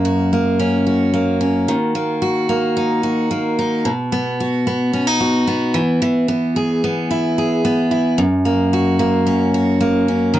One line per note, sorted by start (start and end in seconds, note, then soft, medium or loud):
0.00 1.68 F#2 medium
0.00 0.32 A#3 medium
0.05 0.86 F#4 medium
0.33 1.13 A#3 medium
0.60 1.40 C#4 medium
0.87 2.21 F#4 medium
1.14 1.95 A#3 medium
1.41 1.73 C#4 medium
1.68 3.85 D#3 medium
1.95 2.48 A#3 medium
2.22 3.03 F#4 medium
2.49 3.30 A#3 medium
2.77 3.58 D#4 medium
3.03 3.90 F#4 medium
3.31 3.90 A#3 medium
3.59 3.91 D#4 medium
3.85 5.80 B2 medium
4.12 4.66 B3 medium
4.40 5.19 F#4 medium
4.67 5.47 B3 medium
4.93 5.07 C#4 medium
5.07 5.80 D#4 medium
5.20 5.80 F#4 medium
5.47 6.28 B3 medium
5.74 6.01 E3 medium
6.02 8.18 E3 medium
6.28 6.83 B3 medium
6.56 7.37 G#4 medium
6.84 7.64 B3 medium
7.11 7.90 E4 medium
7.38 8.24 G#4 medium
7.65 8.24 B3 medium
7.91 8.24 E4 medium
8.18 10.35 F#2 medium
8.45 8.99 A#3 medium
8.73 9.54 F#4 medium
8.99 9.80 A#3 medium
9.27 10.07 C#4 medium
9.54 10.39 F#4 medium
9.81 10.39 A#3 medium
10.08 10.39 C#4 medium
10.34 10.39 D#3 medium